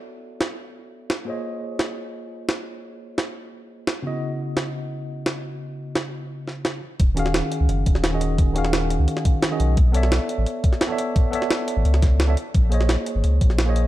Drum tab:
HH |----------------|----------------|----------------|----------------|
SD |----o-------o---|----o-------o---|----o-------o---|----o-------o---|
BD |----------------|----------------|----------------|----------------|

HH |----------------|x-x-x-x-x-x-x-x-|x-x-x-x-x-x-x-x-|x-x-x-x-x-x-x-x-|
SD |----o-----o-o---|---oo------oo---|---oo----o--o---|---oo------oo---|
BD |----------------|o---------o-----|o---------o-----|o---------o-----|

HH |x-x-x-x-x-x-x-x-|x-x-x-x-x-x-x-x-|
SD |---oo----oo-o---|---oo------oo---|
BD |o---------o-----|o---------o-----|